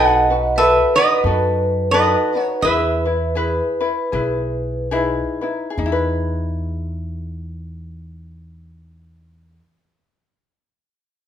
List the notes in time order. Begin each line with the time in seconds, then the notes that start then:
Already playing: B1 D#4 F#4 A4 B4 D#5 F#5
0.30 D#4 F#4 B4
0.56 F#4 A4 B4 E5
0.95 D#4 F#4 B4 D#5
1.24 F#2 D#4 F#4 A4 B4
1.91 D#4 F#4 A4 B4 D#5
2.35 D#4 F#4 B4
2.42 C#5
2.61 E2 E4 G#4 B4 E5
2.65 B4
3.05 E4 B4
3.35 E4 G#4 B4
3.81 E4 B4
4.12 B1 E4 G#4 B4
4.91 D#4 E4 G#4 B4
5.41 D#4 E4 B4
5.70 G#4
5.78 E2 D#4
5.86 E4
5.92 B4